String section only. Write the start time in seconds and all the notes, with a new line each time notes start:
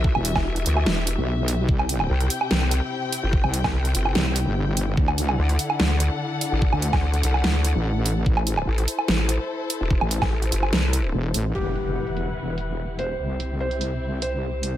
Already playing: E3 B3 F#4 G4 E5
1.69 C3 C4 E4 G5
4.97 D3 D4 A4 F#5
8.26 E4 A4 C5
11.55 E3 E4 G4 B4 F#5
13.19 C4 E4